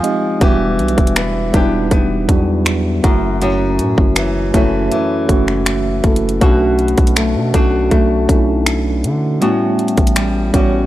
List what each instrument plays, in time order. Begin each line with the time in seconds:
Already playing: nylon-string guitar F3, tine electric piano G#5
0.03 tine electric piano G#3 C4 D#4 G4 D#5, closed hi-hat
0.40 808-style bass E1, nylon-string guitar E3 G4, tine electric piano G3 B3 D4 F#4, kick, closed hi-hat
0.79 808-style bass B1, closed hi-hat
0.88 closed hi-hat
0.98 808-style bass E1, kick, closed hi-hat
1.07 closed hi-hat
1.16 nylon-string guitar B3, finger snap, closed hi-hat
1.52 808-style bass E1, tine electric piano G3 B3 D4 D#4, nylon-string guitar B3 D4 G4, kick, closed hi-hat
1.61 tine electric piano E4
1.91 808-style bass E1, nylon-string guitar B3, kick, closed hi-hat
2.28 808-style bass E2, tine electric piano F#3 B3 D4 F#4, kick, closed hi-hat
2.34 tine electric piano G3
2.66 finger snap, closed hi-hat
3.03 808-style bass F#1, nylon-string guitar F#2, tine electric piano A3 C#4 E4 F#4, kick, closed hi-hat
3.42 nylon-string guitar F#2 C#4, closed hi-hat
3.79 808-style bass A2, closed hi-hat
3.98 808-style bass F#1, kick
4.16 nylon-string guitar E3, finger snap, closed hi-hat
4.53 808-style bass F#1, nylon-string guitar E3 A3 C#4, tine electric piano A3 C#4 E4 F#4, kick, closed hi-hat
4.91 nylon-string guitar E3, closed hi-hat
5.28 808-style bass F#1, tine electric piano A3 C#4 E4 F#4, kick, closed hi-hat
5.48 finger snap
5.66 finger snap, closed hi-hat
6.03 808-style bass F#1, tine electric piano A3 C#4 E4 A4, kick, closed hi-hat
6.16 closed hi-hat
6.29 closed hi-hat
6.41 808-style bass B1, nylon-string guitar B2 F#4, tine electric piano A3 C#4 D4 F#4, kick, closed hi-hat
6.79 closed hi-hat
6.88 closed hi-hat
6.98 808-style bass B1, kick, closed hi-hat
7.07 closed hi-hat
7.16 nylon-string guitar A3, finger snap, closed hi-hat
7.35 808-style bass B2
7.53 808-style bass B1, tine electric piano A3 C#4 D4 F#4, nylon-string guitar A3 D4 F#4, kick, closed hi-hat
7.91 808-style bass B1, nylon-string guitar A3, kick, closed hi-hat
8.28 808-style bass B1, tine electric piano A3 C#4 D4 D#4, kick, closed hi-hat
8.37 tine electric piano E4
8.66 finger snap, closed hi-hat
9.04 808-style bass D3, closed hi-hat
9.40 nylon-string guitar A2 F#4, tine electric piano G3 B3 C#4 F#4, closed hi-hat
9.79 closed hi-hat
9.88 closed hi-hat
9.97 808-style bass A1, kick, closed hi-hat
10.07 closed hi-hat
10.16 nylon-string guitar G3, finger snap, closed hi-hat
10.53 808-style bass A1, tine electric piano G3 B3 C#4 F#4, nylon-string guitar G3 C#4 F#4, kick, closed hi-hat